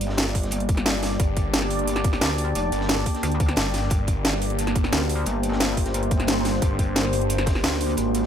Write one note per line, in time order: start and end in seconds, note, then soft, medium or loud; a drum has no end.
0.00 1.18 G1 loud
0.00 8.26 A#3 medium
0.00 8.26 D4 medium
0.00 8.26 G4 medium
0.00 3.89 D5 medium
0.00 closed hi-hat medium
0.09 snare medium
0.18 snare loud
0.18 closed hi-hat medium
0.18 closed hi-hat loud
0.35 kick medium
0.35 closed hi-hat medium
0.35 open hi-hat medium
0.43 snare soft
0.43 closed hi-hat soft
0.51 closed hi-hat loud
0.60 closed hi-hat soft
0.69 kick loud
0.69 closed hi-hat medium
0.77 snare soft
0.77 closed hi-hat soft
0.86 snare loud
0.86 closed hi-hat medium
1.02 snare soft
1.02 closed hi-hat medium
1.02 open hi-hat medium
1.11 snare soft
1.20 1.35 G1 loud
1.20 kick loud
1.20 closed hi-hat medium
1.37 2.20 G1 loud
1.37 kick medium
1.37 closed hi-hat medium
1.54 snare loud
1.54 closed hi-hat medium
1.54 open hi-hat medium
1.62 snare soft
1.70 closed hi-hat medium
1.70 open hi-hat medium
1.79 closed hi-hat soft
1.88 closed hi-hat medium
1.96 snare medium
1.96 closed hi-hat soft
2.04 kick loud
2.04 closed hi-hat medium
2.13 snare soft
2.13 closed hi-hat soft
2.21 2.54 D2 loud
2.21 snare loud
2.21 closed hi-hat medium
2.38 closed hi-hat medium
2.38 open hi-hat medium
2.55 2.71 F1 loud
2.55 closed hi-hat medium
2.55 closed hi-hat loud
2.72 3.05 G1 loud
2.72 closed hi-hat medium
2.81 snare medium
2.89 snare loud
2.89 closed hi-hat medium
3.06 kick medium
3.06 closed hi-hat medium
3.06 open hi-hat medium
3.15 snare soft
3.15 closed hi-hat soft
3.23 3.56 D2 loud
3.23 closed hi-hat medium
3.23 closed hi-hat loud
3.32 closed hi-hat soft
3.40 kick loud
3.40 closed hi-hat medium
3.49 snare soft
3.49 closed hi-hat soft
3.56 3.90 G1 loud
3.56 snare loud
3.56 closed hi-hat medium
3.74 snare soft
3.74 closed hi-hat medium
3.74 open hi-hat medium
3.83 snare soft
3.90 4.07 G1 loud
3.90 8.26 C5 medium
3.90 kick loud
3.90 closed hi-hat loud
3.90 closed hi-hat medium
4.07 4.91 G1 loud
4.07 kick medium
4.07 closed hi-hat medium
4.25 snare loud
4.25 closed hi-hat medium
4.25 open hi-hat medium
4.33 snare soft
4.42 closed hi-hat medium
4.42 open hi-hat medium
4.50 closed hi-hat soft
4.59 closed hi-hat medium
4.67 snare medium
4.67 closed hi-hat soft
4.75 kick loud
4.75 closed hi-hat medium
4.84 snare soft
4.84 closed hi-hat soft
4.92 5.25 D2 loud
4.92 snare loud
4.92 closed hi-hat medium
5.09 closed hi-hat medium
5.09 open hi-hat medium
5.26 6.61 G1 loud
5.26 closed hi-hat medium
5.43 closed hi-hat medium
5.52 snare medium
5.60 snare loud
5.60 closed hi-hat medium
5.77 kick medium
5.77 closed hi-hat medium
5.77 open hi-hat medium
5.85 snare medium
5.85 closed hi-hat soft
5.94 closed hi-hat medium
5.94 closed hi-hat loud
6.03 closed hi-hat soft
6.11 kick loud
6.11 closed hi-hat medium
6.20 snare soft
6.20 closed hi-hat soft
6.27 snare loud
6.27 closed hi-hat medium
6.44 snare soft
6.44 closed hi-hat medium
6.44 open hi-hat medium
6.54 snare soft
6.62 6.78 G1 loud
6.62 kick loud
6.62 closed hi-hat loud
6.79 7.62 G1 loud
6.79 kick medium
6.79 closed hi-hat medium
6.96 snare loud
6.96 closed hi-hat loud
6.96 open hi-hat medium
7.05 snare soft
7.13 closed hi-hat medium
7.13 open hi-hat medium
7.21 closed hi-hat soft
7.30 closed hi-hat loud
7.38 snare medium
7.38 closed hi-hat soft
7.46 kick loud
7.46 snare loud
7.46 closed hi-hat medium
7.46 open hi-hat medium
7.55 snare soft
7.64 7.96 D2 loud
7.64 snare loud
7.64 closed hi-hat medium
7.73 snare loud
7.73 open hi-hat medium
7.81 open hi-hat medium
7.90 closed hi-hat medium
7.97 8.26 G#1 loud
7.97 closed hi-hat medium
8.15 closed hi-hat medium
8.23 snare medium